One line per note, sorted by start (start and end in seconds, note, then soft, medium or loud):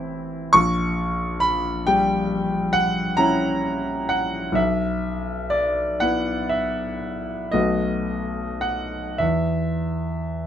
0.00 0.49 A1 medium
0.00 0.49 C4 soft
0.00 0.50 E4 soft
0.00 0.52 A5 medium
0.53 4.53 A#1 medium
0.53 1.42 C#6 loud
1.40 1.85 B5 medium
1.87 4.01 G3 soft
1.87 2.74 G5 medium
2.73 3.18 F#5 medium
3.17 4.53 C#4 soft
3.17 4.53 E4 soft
3.17 4.09 A#5 medium
4.09 4.56 F#5 medium
4.52 7.48 B1 medium
4.52 5.52 E5 medium
5.50 6.00 D5 medium
6.00 7.50 B3 soft
6.00 7.50 E4 soft
6.00 6.51 F#5 medium
6.49 7.53 E5 medium
7.52 9.17 B1 soft
7.52 9.17 A3 soft
7.52 9.17 B3 soft
7.52 9.18 F#4 soft
7.52 8.62 D#5 medium
8.61 9.20 F#5 medium
9.18 10.47 E2 soft
9.18 10.47 E5 medium